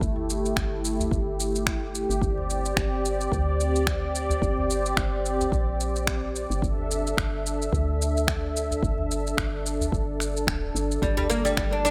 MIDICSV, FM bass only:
0, 0, Header, 1, 2, 480
1, 0, Start_track
1, 0, Tempo, 550459
1, 15, Time_signature, 4, 2, 24, 8
1, 10382, End_track
2, 0, Start_track
2, 0, Title_t, "FM bass"
2, 0, Program_c, 0, 39
2, 11, Note_on_c, 0, 31, 91
2, 463, Note_off_c, 0, 31, 0
2, 492, Note_on_c, 0, 31, 81
2, 944, Note_off_c, 0, 31, 0
2, 971, Note_on_c, 0, 31, 90
2, 1790, Note_off_c, 0, 31, 0
2, 1826, Note_on_c, 0, 31, 69
2, 1915, Note_off_c, 0, 31, 0
2, 1932, Note_on_c, 0, 31, 101
2, 2384, Note_off_c, 0, 31, 0
2, 2411, Note_on_c, 0, 31, 83
2, 2864, Note_off_c, 0, 31, 0
2, 2893, Note_on_c, 0, 38, 89
2, 3825, Note_off_c, 0, 38, 0
2, 3852, Note_on_c, 0, 31, 97
2, 4304, Note_off_c, 0, 31, 0
2, 4332, Note_on_c, 0, 31, 83
2, 4784, Note_off_c, 0, 31, 0
2, 4812, Note_on_c, 0, 34, 86
2, 5631, Note_off_c, 0, 34, 0
2, 5667, Note_on_c, 0, 31, 73
2, 5756, Note_off_c, 0, 31, 0
2, 5773, Note_on_c, 0, 31, 96
2, 6224, Note_off_c, 0, 31, 0
2, 6256, Note_on_c, 0, 31, 81
2, 6706, Note_off_c, 0, 31, 0
2, 6735, Note_on_c, 0, 38, 92
2, 7665, Note_off_c, 0, 38, 0
2, 7695, Note_on_c, 0, 31, 97
2, 8146, Note_off_c, 0, 31, 0
2, 8176, Note_on_c, 0, 31, 85
2, 8626, Note_off_c, 0, 31, 0
2, 8653, Note_on_c, 0, 31, 90
2, 9126, Note_off_c, 0, 31, 0
2, 9131, Note_on_c, 0, 26, 90
2, 9336, Note_off_c, 0, 26, 0
2, 9369, Note_on_c, 0, 31, 83
2, 9575, Note_off_c, 0, 31, 0
2, 9608, Note_on_c, 0, 31, 101
2, 10062, Note_off_c, 0, 31, 0
2, 10087, Note_on_c, 0, 31, 84
2, 10382, Note_off_c, 0, 31, 0
2, 10382, End_track
0, 0, End_of_file